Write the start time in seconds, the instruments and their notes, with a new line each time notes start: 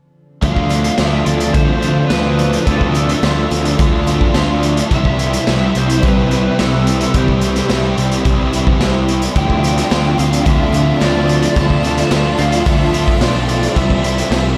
0.42 picked electric bass D2, overdriven electric guitar D3 A3 D4 F4, twelve-string acoustic guitar F3, lead electric guitar F5, kick, closed hi-hat
0.56 kick
0.70 twelve-string acoustic guitar C4, closed hi-hat
0.84 closed hi-hat
0.98 picked electric bass D2, overdriven electric guitar D3 A3 D4 F4, twelve-string acoustic guitar F3, snare, closed hi-hat
1.03 lead electric guitar E5
1.26 picked electric bass D2, twelve-string acoustic guitar C4, lead electric guitar D5, closed hi-hat
1.40 closed hi-hat
1.53 picked electric bass D2, overdriven electric guitar D3 A3 D4 F4, twelve-string acoustic guitar A4, lead electric guitar C5, kick, closed hi-hat
1.81 overdriven electric guitar A3 D4 F4, twelve-string acoustic guitar D4, closed hi-hat
2.07 picked electric bass D2, overdriven electric guitar D3 A3 D4, lead electric guitar B4, snare, closed hi-hat
2.11 twelve-string acoustic guitar C4, overdriven electric guitar F4
2.39 twelve-string acoustic guitar F3, closed hi-hat
2.53 closed hi-hat
2.65 picked electric bass D2, overdriven electric guitar D3 A3 D4 F4, twelve-string acoustic guitar F3, lead electric guitar A4, kick, closed hi-hat
2.81 kick
2.94 twelve-string acoustic guitar C4, closed hi-hat
3.09 closed hi-hat
3.21 picked electric bass D2, overdriven electric guitar D3 A3 D4 F4, twelve-string acoustic guitar F3, snare, closed hi-hat
3.51 picked electric bass D2, twelve-string acoustic guitar C4, closed hi-hat
3.65 closed hi-hat
3.78 picked electric bass D2, overdriven electric guitar D3 A3 D4 F4, twelve-string acoustic guitar A4, kick, closed hi-hat
4.06 overdriven electric guitar A3 D4 F4, twelve-string acoustic guitar D4, closed hi-hat
4.21 kick
4.33 picked electric bass D2, overdriven electric guitar D3 A3 D4 F4, twelve-string acoustic guitar C4, snare, closed hi-hat
4.63 twelve-string acoustic guitar F3, closed hi-hat
4.77 closed hi-hat
4.90 picked electric bass C2, overdriven electric guitar C3 E3 G3 C4 E4, clean electric guitar G4, kick, closed hi-hat
4.95 lead electric guitar E5
5.05 kick
5.19 twelve-string acoustic guitar E4, closed hi-hat
5.33 closed hi-hat
5.47 picked electric bass C2, overdriven electric guitar E3 G3 C4 E4, snare, closed hi-hat
5.75 picked electric bass C2, lead electric guitar C5, closed hi-hat
5.90 closed hi-hat
6.02 picked electric bass C2, overdriven electric guitar C3 E3 G3 C4 E4, twelve-string acoustic guitar G4, lead electric guitar B4, kick, closed hi-hat
6.31 overdriven electric guitar G3 C4 E4, twelve-string acoustic guitar E4, closed hi-hat
6.58 picked electric bass C2, overdriven electric guitar E3 G3 C4 E4, lead electric guitar A4, snare, closed hi-hat
6.87 closed hi-hat
7.01 closed hi-hat
7.14 picked electric bass C2, overdriven electric guitar C3 E3 G3 C4 E4, lead electric guitar G4, kick, closed hi-hat
7.28 kick
7.41 twelve-string acoustic guitar E4, closed hi-hat
7.56 snare, closed hi-hat
7.69 picked electric bass C2, overdriven electric guitar E3 G3 C4 E4, snare, closed hi-hat
7.98 picked electric bass C2, closed hi-hat
8.12 closed hi-hat
8.24 picked electric bass C2, overdriven electric guitar C3 E3 G3 C4 E4, twelve-string acoustic guitar G4, kick, closed hi-hat
8.52 overdriven electric guitar G3 C4 E4, twelve-string acoustic guitar E4, closed hi-hat
8.67 kick
8.80 picked electric bass C2, overdriven electric guitar E3 G3 C4 E4, snare, closed hi-hat
9.08 twelve-string acoustic guitar B3, closed hi-hat
9.22 closed hi-hat
9.35 picked electric bass D2, overdriven electric guitar D3 A3 D4 F4, clean electric guitar F3 C4, twelve-string acoustic guitar F3, ambient pad F4 C5 D5 A5, lead electric guitar G5, kick, closed hi-hat
9.50 kick
9.63 twelve-string acoustic guitar C4, closed hi-hat
9.78 snare, closed hi-hat
9.90 picked electric bass D2, overdriven electric guitar D3 A3 D4 F4, twelve-string acoustic guitar F3, snare, closed hi-hat
10.18 picked electric bass D2, twelve-string acoustic guitar C4, lead electric guitar F5, closed hi-hat
10.33 closed hi-hat
10.45 picked electric bass D2, overdriven electric guitar D3 A3 D4 F4, twelve-string acoustic guitar A4, lead electric guitar E5, kick, closed hi-hat
10.73 overdriven electric guitar A3 D4 F4, twelve-string acoustic guitar D4, closed hi-hat
11.00 picked electric bass D2, overdriven electric guitar D3 A3 D4 F4, twelve-string acoustic guitar C4, lead electric guitar D5, snare, closed hi-hat
11.28 twelve-string acoustic guitar F3, closed hi-hat
11.42 closed hi-hat
11.55 picked electric bass D2, overdriven electric guitar D3 A3 D4 F4, twelve-string acoustic guitar F3, ambient pad G5, lead electric guitar A5, kick, closed hi-hat
11.70 kick
11.83 twelve-string acoustic guitar C4, closed hi-hat
11.98 snare, closed hi-hat
12.10 picked electric bass D2, overdriven electric guitar D3 A3 D4 F4, twelve-string acoustic guitar F3, snare, closed hi-hat
12.38 picked electric bass D2, twelve-string acoustic guitar C4, lead electric guitar F5, closed hi-hat
12.52 closed hi-hat
12.66 picked electric bass D2, overdriven electric guitar D3 A3 D4 F4, twelve-string acoustic guitar A4, lead electric guitar E5, kick, closed hi-hat
12.94 overdriven electric guitar A3 D4 F4, twelve-string acoustic guitar D4, closed hi-hat
13.08 kick
13.21 picked electric bass B1, overdriven electric guitar D3 A3 D4 F4, twelve-string acoustic guitar C4, lead electric guitar D5, snare, closed hi-hat
13.49 twelve-string acoustic guitar F3, closed hi-hat
13.63 closed hi-hat
13.76 picked electric bass C2, overdriven electric guitar C3 E3 G3 C4 E4, ambient pad G4 E5 B5, lead electric guitar E5, kick, closed hi-hat
13.90 kick
14.04 twelve-string acoustic guitar E4, closed hi-hat
14.18 closed hi-hat
14.30 picked electric bass C2, overdriven electric guitar E3 G3 C4 E4, snare, closed hi-hat